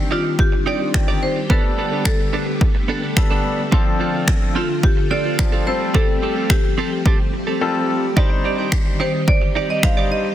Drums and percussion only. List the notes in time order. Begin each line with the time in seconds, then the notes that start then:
0.39 kick
0.94 finger snap, kick
1.50 kick
2.05 finger snap, kick
2.61 kick
3.17 finger snap, kick
3.72 kick
4.28 finger snap, kick
4.83 kick
5.39 finger snap, kick
5.95 kick
6.50 finger snap, kick
7.06 kick
8.17 kick
8.72 finger snap, kick
9.28 kick
9.83 finger snap, kick